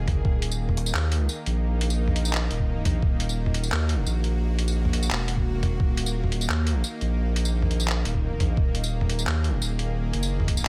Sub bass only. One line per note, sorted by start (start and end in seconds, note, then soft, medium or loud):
0.08 0.24 F#1 loud
0.25 0.93 D#1 loud
0.94 1.28 D#2 loud
1.46 2.49 A#1 loud
2.51 2.84 D#1 loud
2.85 3.01 A#1 loud
3.03 3.71 D#1 loud
3.72 4.05 D#2 loud
4.07 5.09 A#1 loud
5.11 5.79 E1 loud
5.80 6.48 D#1 loud
6.49 6.83 D#2 loud
7.01 8.04 A#1 loud
8.05 8.39 D#1 loud
8.40 8.56 A#1 loud
8.57 9.25 D#1 loud
9.27 9.60 D#2 loud
9.61 10.12 D#1 loud
10.14 10.64 F#1 loud